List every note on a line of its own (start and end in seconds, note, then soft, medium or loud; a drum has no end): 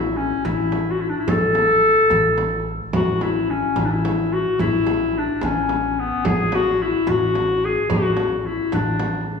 0.00 0.30 A1 medium
0.00 0.18 E4 medium
0.17 0.47 C#4 medium
0.45 1.12 A1 medium
0.45 0.93 E4 medium
0.45 frame drum soft
0.72 frame drum medium
0.91 1.03 F#4 medium
1.01 1.11 E4 medium
1.09 1.21 D4 medium
1.19 1.31 E4 medium
1.28 1.95 A1 medium
1.28 2.67 A4 loud
1.28 frame drum medium
1.55 frame drum medium
2.10 2.78 A1 medium
2.10 frame drum medium
2.38 frame drum medium
2.93 3.61 A1 medium
2.93 3.24 F#4 medium
2.93 frame drum medium
3.21 3.52 E4 medium
3.21 frame drum medium
3.50 3.81 C#4 medium
3.76 4.43 A1 medium
3.76 3.86 E4 medium
3.76 frame drum medium
3.85 3.92 D4 medium
3.91 4.34 E4 medium
4.05 frame drum medium
4.33 4.60 F#4 medium
4.59 5.27 A1 medium
4.59 5.19 E4 medium
4.59 frame drum medium
4.87 frame drum medium
5.18 5.46 D4 medium
5.42 6.09 A1 medium
5.42 6.01 C#4 medium
5.42 frame drum medium
5.69 frame drum medium
5.99 6.28 B3 medium
6.25 6.92 A1 medium
6.25 6.56 G#4 loud
6.25 frame drum medium
6.52 6.84 F#4 medium
6.52 frame drum medium
6.82 7.10 E4 medium
7.07 7.74 A1 medium
7.07 7.66 F#4 medium
7.07 frame drum medium
7.35 frame drum medium
7.65 7.90 G#4 medium
7.90 8.57 A1 medium
7.90 8.38 F#4 medium
7.90 frame drum medium
8.17 frame drum medium
8.38 8.47 F#4 medium
8.46 8.76 E4 medium
8.72 9.40 A1 medium
8.72 9.29 D4 medium
8.72 frame drum medium
9.00 frame drum medium